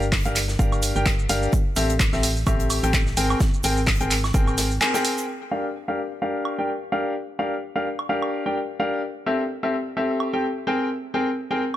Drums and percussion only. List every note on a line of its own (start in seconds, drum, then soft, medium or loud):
0.02 shaker soft
0.12 kick loud
0.12 snare loud
0.12 clap loud
0.12 open hi-hat medium
0.12 shaker soft
0.25 closed hi-hat soft
0.25 shaker soft
0.36 clap medium
0.36 open hi-hat loud
0.36 shaker medium
0.48 snare medium
0.48 shaker soft
0.59 kick loud
0.59 shaker soft
0.59 shaker medium
0.72 high woodblock medium
0.72 shaker soft
0.82 open hi-hat loud
0.82 shaker medium
0.96 shaker soft
1.06 kick loud
1.06 snare loud
1.06 clap loud
1.06 shaker soft
1.06 shaker medium
1.19 shaker soft
1.29 open hi-hat loud
1.29 shaker medium
1.43 shaker soft
1.53 kick loud
1.53 shaker soft
1.53 shaker medium
1.76 open hi-hat medium
1.76 shaker medium
1.90 closed hi-hat soft
1.90 shaker soft
1.99 kick loud
1.99 snare loud
1.99 clap loud
1.99 shaker soft
1.99 shaker medium
2.13 snare soft
2.13 shaker soft
2.23 open hi-hat loud
2.23 shaker medium
2.37 shaker soft
2.47 kick loud
2.47 high woodblock medium
2.47 shaker soft
2.47 shaker medium
2.60 closed hi-hat soft
2.60 shaker soft
2.70 open hi-hat medium
2.70 high woodblock medium
2.70 shaker medium
2.83 closed hi-hat soft
2.83 shaker soft
2.93 kick loud
2.93 snare medium
2.93 clap loud
2.93 shaker medium
2.93 shaker soft
3.07 snare soft
3.07 shaker soft
3.17 open hi-hat medium
3.17 shaker medium
3.30 high woodblock medium
3.30 shaker soft
3.40 kick loud
3.40 snare loud
3.40 shaker medium
3.40 shaker soft
3.54 shaker soft
3.63 open hi-hat loud
3.63 shaker medium
3.77 shaker soft
3.86 kick medium
3.86 snare loud
3.86 clap loud
3.86 open hi-hat medium
3.86 shaker soft
4.00 closed hi-hat soft
4.00 shaker soft
4.11 clap medium
4.11 open hi-hat loud
4.11 shaker medium
4.24 snare medium
4.24 high woodblock medium
4.24 shaker soft
4.34 kick loud
4.34 shaker medium
4.34 shaker soft
4.48 high woodblock medium
4.48 shaker soft
4.58 snare loud
4.58 open hi-hat loud
4.58 shaker medium
4.71 shaker soft
4.81 clap loud
4.81 shaker medium
4.81 shaker soft
4.94 snare loud
4.94 shaker soft
4.94 shaker medium
5.05 open hi-hat loud
5.05 shaker medium
5.18 shaker medium
5.18 shaker soft
6.45 high woodblock medium
7.99 high woodblock medium
8.22 high woodblock medium
10.20 high woodblock medium